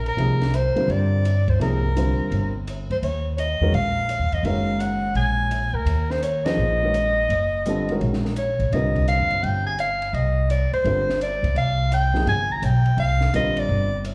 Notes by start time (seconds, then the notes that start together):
Already playing: A#1
0.06 A#4, ride
0.17 C2 C3 F3 A#3 D#4 G#4, ride
0.42 snare, ride
0.54 C5, hi-hat pedal, ride
0.75 D3 G3 C4 F4 A#4, ride
0.88 G2 D5, ride
1.25 hi-hat pedal, ride
1.48 C5, kick, ride
1.60 C2 C3 F3 A#3 D#4 G#4 A#4, ride
1.96 D3 G3 C4 F4 C5, hi-hat pedal, ride
2.19 muted upright bass stroke
2.31 G1, ride
2.67 hi-hat pedal, ride
2.90 E2 C5, ride
3.02 D#2 C#5, ride
3.37 C#5 D#5, hi-hat pedal, ride
3.60 E2 D#3 G#3 C#4 F#4 A#4
3.72 A#1 F5, ride
4.09 hi-hat pedal, ride
4.19 D#2
4.32 E2 D#5, ride
4.43 F#1 D#3 G#3 C#4 F#4 A#4 F5, ride
4.80 F#5, hi-hat pedal, ride
5.15 A#1 G#5, ride
5.51 hi-hat pedal, ride
5.73 D2 A#4
5.85 D#2, ride
6.10 C5, snare
6.23 C#5, hi-hat pedal, ride
6.46 F3 A#3 D#4 G#4 C5 D#5, snare, ride
6.57 A#1
6.82 D#3 G#3 C#4 F#4 A#4
6.94 hi-hat pedal, ride
7.29 F#1, ride
7.66 D3 G3 C4 F4 A4, hi-hat pedal, ride
7.89 D#3 G#3 C#4 F#4 A#4, ride
8.01 A#1, ride
8.13 snare
8.25 snare
8.36 C#5, hi-hat pedal, ride
8.59 A#1, ride
8.72 C2 D3 G3 C4 F4 A#4 D#5, ride
8.96 kick, ride
9.08 F5, hi-hat pedal, ride
9.19 F2
9.31 G2, ride
9.43 G1 G5, ride
9.66 G#5
9.79 F5, hi-hat pedal, ride
10.02 ride
10.13 C2 D#5, ride
10.50 D5, hi-hat pedal, ride
10.72 C5, muted upright bass stroke, ride
10.84 G1 D3 G3 C4 F4 A#4, ride
11.09 snare
11.21 D5, hi-hat pedal, ride
11.43 C#2, ride
11.55 C2 F5, ride
11.92 G5, hi-hat pedal, ride
12.14 C3 F3 A#3 D#4 G#4, snare
12.26 G1 G#5, ride
12.52 A#5
12.62 B1 G5, hi-hat pedal, ride
12.85 ride
12.97 C2 F5, ride
13.21 snare
13.33 A#1 D3 G3 C4 F4 A#4 D#5, hi-hat pedal, ride
13.57 D5, ride
13.69 G1
14.05 hi-hat pedal, ride